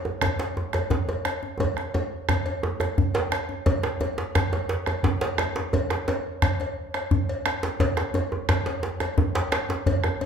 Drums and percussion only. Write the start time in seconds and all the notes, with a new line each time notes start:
0.05 djembe tone
0.21 bombo rim, bombo low, cowbell, djembe slap, djembe tone, djembe bass
0.39 cowbell, djembe slap, djembe tone
0.57 djembe tone
0.73 bombo rim, cowbell, djembe slap, djembe tone
0.90 bombo low, djembe slap, djembe tone, djembe bass
1.09 cowbell, djembe tone
1.25 bombo rim, cowbell, djembe slap
1.43 djembe tone
1.59 bombo low, cowbell, djembe slap, djembe tone, djembe bass
1.77 bombo rim, djembe slap
1.94 bombo rim, cowbell, djembe slap, djembe tone
2.29 bombo rim, bombo low, cowbell, djembe slap, djembe tone, djembe bass
2.46 cowbell, djembe tone
2.63 djembe tone
2.80 bombo rim, cowbell, djembe slap, djembe tone
2.98 bombo rim, bombo low, djembe slap, djembe tone, djembe bass
3.14 bombo rim, cowbell, djembe slap
3.32 bombo rim, cowbell, djembe slap
3.49 djembe tone
3.66 bombo low, cowbell, djembe tone, djembe bass
3.83 bombo rim, djembe slap
4.01 cowbell, djembe slap, djembe tone
4.18 djembe slap
4.35 bombo rim, bombo low, cowbell, djembe slap, djembe bass
4.53 cowbell, djembe tone
4.69 djembe slap
4.86 bombo rim, cowbell, djembe slap, djembe tone
5.03 bombo low, djembe slap, djembe tone, djembe bass
5.21 cowbell, djembe slap
5.38 bombo rim, cowbell, djembe slap, djembe tone
5.56 djembe slap, djembe tone
5.73 bombo low, cowbell, djembe tone, djembe bass
5.90 bombo rim, djembe slap
6.08 cowbell, djembe slap, djembe tone
6.42 bombo rim, bombo low, cowbell, djembe slap, djembe bass
6.60 cowbell, djembe tone
6.94 bombo rim, cowbell, djembe slap
7.11 bombo low, djembe slap, djembe tone, djembe bass
7.29 cowbell
7.46 bombo rim, cowbell, djembe slap
7.63 djembe slap, djembe tone
7.80 bombo low, cowbell, djembe slap, djembe bass
7.97 bombo rim, djembe slap
8.14 cowbell, djembe slap, djembe tone
8.32 djembe tone
8.49 bombo rim, bombo low, cowbell, djembe slap, djembe bass
8.66 cowbell, djembe slap, djembe tone
8.83 djembe slap
9.00 bombo rim, cowbell, djembe slap, djembe tone
9.18 bombo low, djembe slap, djembe tone, djembe bass
9.35 cowbell, djembe slap
9.52 bombo rim, cowbell, djembe slap
9.69 djembe slap, djembe tone
9.86 bombo low, cowbell, djembe tone, djembe bass
10.04 bombo rim, djembe slap, djembe tone
10.21 cowbell, djembe tone